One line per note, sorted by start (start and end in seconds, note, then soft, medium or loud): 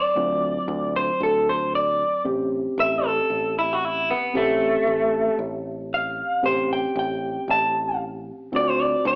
0.00 0.12 F#3 medium
0.00 0.12 C4 medium
0.00 0.12 F4 medium
0.00 0.93 D5 loud
0.15 0.57 D2 loud
0.15 2.21 F#3 medium
0.15 2.21 C4 medium
0.15 2.22 F4 medium
0.68 1.09 D2 loud
0.96 1.21 C5 medium
1.20 2.03 D2 loud
1.20 1.47 A4 medium
1.49 1.74 C5 medium
1.75 2.25 D5 loud
2.25 2.66 A1 medium
2.25 4.30 C4 medium
2.25 4.30 C#4 medium
2.25 4.31 G4 medium
2.78 3.19 A1 loud
2.78 3.06 E5 loud
3.06 3.55 A4 medium
3.30 4.12 A1 medium
3.59 3.73 E4 medium
3.73 3.85 F#4 medium
3.85 4.09 E4 medium
4.11 4.35 B3 medium
4.34 4.76 A1 loud
4.34 5.37 A3 loud
4.34 6.39 C4 medium
4.34 6.39 C#4 medium
4.34 6.40 G4 medium
4.87 5.28 A1 loud
5.39 6.21 A1 loud
5.94 6.43 F5 medium
6.43 6.85 A1 medium
6.43 8.48 C4 medium
6.43 8.49 C#4 medium
6.43 8.49 G4 medium
6.43 6.70 C5 medium
6.73 6.97 G5 medium
6.96 7.37 A1 loud
6.96 7.48 G5 medium
7.48 8.30 A1 loud
7.48 8.00 A5 loud
8.52 8.94 D2 medium
8.52 9.15 C4 medium
8.52 9.15 F4 medium
8.52 9.15 F#4 medium
8.56 8.70 D5 loud
8.70 8.82 C5 loud
8.82 9.06 D5 medium
9.05 9.15 D2 loud
9.05 9.15 D5 medium